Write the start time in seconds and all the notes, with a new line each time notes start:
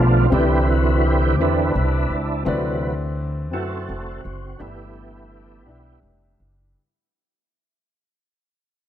Already playing: B1 D3 F3 A3 B3 D4 F4 G4 D5
0.30 C2 C3 D3 E3 C4 E4 G4 B4
0.34 B4 D5
0.70 F#4
1.06 G4
1.38 E2 D3 E3 C4 D4 E4 G4 B4 E5
1.75 C2
2.10 C#2
2.45 D2 C3 D3 E3 F#3 C4 E4 F#4 B4 D5
3.51 F#2 C4 E4 F#4 A4 B4 E5
3.89 F1
4.24 F#1 F#4
4.58 G1 G2 E3 A3 B3 D4 E4 G4 B4 E5
5.66 B1 D4 E4 G4 B4 E5
6.03 F1
6.40 F#1